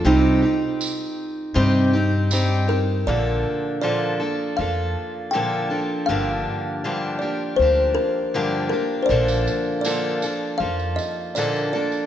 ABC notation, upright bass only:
X:1
M:4/4
L:1/8
Q:1/4=80
K:Bb
V:1 name="Upright bass" clef=bass
C,, z3 G,,4 | B,,, z3 F,, z3 | G,,, z3 D,, z3 | B,,, z3 F,, z3 |]